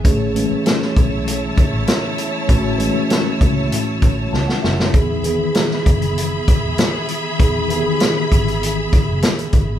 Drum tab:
HH |x-x-x-x-x-x-x-x-|x-x-x-x-x-x-----|x-x-x-xxx-x-x-x-|x-x-x-xxx-x-xxx-|
SD |----oo------o---|----o-------oooo|----oo------o---|----o-------o---|
BD |o-----o---o-----|o-----o---o-----|o-----o---o-----|o-----o---o---o-|